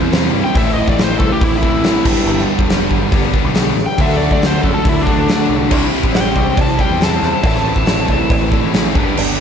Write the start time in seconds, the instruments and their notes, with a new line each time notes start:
Already playing: distorted electric guitar C3 E3, overdriven electric guitar C3 E3 G3 C4 E4, steel-string acoustic guitar G3 C4 E4 C5
0.02 picked electric bass E2
0.12 steel-string acoustic guitar C3 E3 G3 C4 E4 C5, snare, open hi-hat
0.33 picked electric bass G2, steel-string acoustic guitar G3 C4 E4 C5
0.44 steel-string acoustic guitar G3 C4 E4 C5, lead electric guitar G5
0.53 picked electric bass A1, overdriven electric guitar A2 E3, steel-string acoustic guitar A2 E3 A3, kick, open hi-hat
0.57 overdriven electric guitar A3, steel-string acoustic guitar C4 E4 B4, lead electric guitar E5
0.73 lead electric guitar D#5
0.78 steel-string acoustic guitar A3 C4 E4 B4
0.88 picked electric bass A1, lead electric guitar D5, kick
0.98 steel-string acoustic guitar A2 E3 A3 C4 E4 B4, snare, open hi-hat
1.04 lead electric guitar C5
1.11 steel-string acoustic guitar A3 C4 E4 B4
1.19 picked electric bass C2, overdriven electric guitar E3 A3, lead electric guitar A4, kick
1.23 overdriven electric guitar A2
1.32 steel-string acoustic guitar A3 C4 E4 B4, lead electric guitar G4
1.41 picked electric bass A1, lead electric guitar E4, kick, open hi-hat
1.55 steel-string acoustic guitar A3 C4 E4 B4, lead electric guitar E4
1.63 distorted electric guitar A2 E3, steel-string acoustic guitar A3 C4 E4 B4, kick
1.71 picked electric bass A1
1.84 steel-string acoustic guitar A2 E3 A3 C4, snare, open hi-hat
1.88 steel-string acoustic guitar E4 B4
2.05 picked electric bass G1, overdriven electric guitar G2 D3 G3, distorted electric guitar G2 D3, steel-string acoustic guitar G3 D4 G4, kick, snare, crash
2.09 distorted electric guitar B3, steel-string acoustic guitar B4
2.17 steel-string acoustic guitar D4 G4 B4
2.26 picked electric bass G1, steel-string acoustic guitar G3 D4 G4 B4
2.38 snare
2.48 steel-string acoustic guitar G3 D4 G4 B4
2.58 picked electric bass E1, kick
2.69 overdriven electric guitar G2 D3, steel-string acoustic guitar G3 D4 G4 B4, snare, open hi-hat
2.73 overdriven electric guitar G3
2.81 steel-string acoustic guitar D4 G4 B4
2.91 picked electric bass G1, kick
3.01 steel-string acoustic guitar D4 G4 B4
3.12 picked electric bass G1, distorted electric guitar G2 D3 G3 B3 D4, kick, open hi-hat
3.24 steel-string acoustic guitar D4 G4 B4
3.34 distorted electric guitar G2 D3 B3, steel-string acoustic guitar G3 D4 G4 B4, kick
3.44 picked electric bass B1
3.55 steel-string acoustic guitar G3 D4 G4 B4, snare, open hi-hat
3.76 picked electric bass A1, steel-string acoustic guitar G3 D4 G4 B4, snare
3.86 steel-string acoustic guitar B4, lead electric guitar G5
3.91 steel-string acoustic guitar D4 G4
3.98 picked electric bass D2, overdriven electric guitar D3 A3 D4, steel-string acoustic guitar D3 A3 D4 F#4 A4, distorted electric guitar F#3, lead electric guitar E5, kick, open hi-hat
4.10 snare
4.17 lead electric guitar D5
4.21 steel-string acoustic guitar A3 D4 F#4 A4
4.31 picked electric bass D2, lead electric guitar D5, kick
4.42 steel-string acoustic guitar D3 A3 D4 F#4 A4, snare, open hi-hat
4.47 lead electric guitar C5
4.55 steel-string acoustic guitar D4 F#4 A4
4.62 picked electric bass F#2, overdriven electric guitar A3 D4, lead electric guitar A4, kick
4.66 overdriven electric guitar D3
4.74 steel-string acoustic guitar D4 F#4 A4, lead electric guitar A4
4.85 picked electric bass D2, lead electric guitar E4, kick, open hi-hat
4.97 steel-string acoustic guitar D4 F#4 A4
5.02 lead electric guitar D4
5.07 distorted electric guitar D3 F#3, steel-string acoustic guitar A3 D4 F#4 A4, kick
5.17 picked electric bass D2
5.28 picked electric bass D2, steel-string acoustic guitar D3 A3 D4 F#4 A4, distorted electric guitar F#3, snare, open hi-hat
5.49 picked electric bass C2, steel-string acoustic guitar A3 D4 F#4 A4
5.60 steel-string acoustic guitar D4 F#4 A4
5.70 picked electric bass C2, steel-string acoustic guitar C3 E3 G3 C4 E4 C5, overdriven electric guitar C3 G3 G4, kick, crash, cowbell
5.75 overdriven electric guitar C4, distorted electric guitar E4
5.92 steel-string acoustic guitar G3 C4 E4 C5
6.03 picked electric bass A1, kick
6.11 steel-string acoustic guitar C3 E3 G3 C4 E4 C5, snare, open hi-hat, cowbell
6.16 lead electric guitar G5
6.24 steel-string acoustic guitar G3 C4 E4 C5
6.35 picked electric bass C2, overdriven electric guitar G3 C4, kick, cowbell
6.39 overdriven electric guitar C3
6.45 steel-string acoustic guitar G3 C4 E4 C5
6.57 picked electric bass C2, kick, open hi-hat, cowbell
6.61 lead electric guitar A5
6.67 steel-string acoustic guitar G3 C4 E4 C5
6.79 distorted electric guitar C3, steel-string acoustic guitar G3 C4 E4 C5, lead electric guitar G5, kick, cowbell
6.90 picked electric bass E2
7.01 steel-string acoustic guitar C3 E3 G3 C4 E4 C5, lead electric guitar A5, snare, open hi-hat
7.23 picked electric bass E2, steel-string acoustic guitar G3 C4 E4 C5, snare
7.34 steel-string acoustic guitar G3 C4 E4 C5
7.42 picked electric bass A1, overdriven electric guitar A2 E3 A4, steel-string acoustic guitar A2 E3 A3 C4 E4 B4, kick, open hi-hat, cowbell
7.46 overdriven electric guitar A3, lead electric guitar A5
7.55 snare
7.65 steel-string acoustic guitar A3 C4 E4 B4
7.76 picked electric bass A1, kick
7.86 steel-string acoustic guitar A2 E3 A3 C4 E4 B4, snare, open hi-hat, cowbell
7.98 steel-string acoustic guitar A3 C4 E4 B4
8.08 picked electric bass C2, overdriven electric guitar A2 E3 A3, kick, cowbell
8.18 steel-string acoustic guitar A3 C4 E4 B4
8.30 picked electric bass A1, kick, open hi-hat, cowbell
8.40 steel-string acoustic guitar A3 C4 E4 B4
8.49 steel-string acoustic guitar A3 C4 E4 B4, kick
8.53 distorted electric guitar A2 E3, cowbell
8.63 picked electric bass A1
8.71 steel-string acoustic guitar A2 E3 A3 C4 E4 B4, snare, open hi-hat
8.93 picked electric bass G1, overdriven electric guitar G2 D3, distorted electric guitar G2 D3, steel-string acoustic guitar G3 D4 G4 B4, kick
8.98 distorted electric guitar G3 B3 D4, overdriven electric guitar G3
9.05 steel-string acoustic guitar D4 G4 B4
9.16 picked electric bass G1, steel-string acoustic guitar G3 D4 G4 B4, cowbell, crash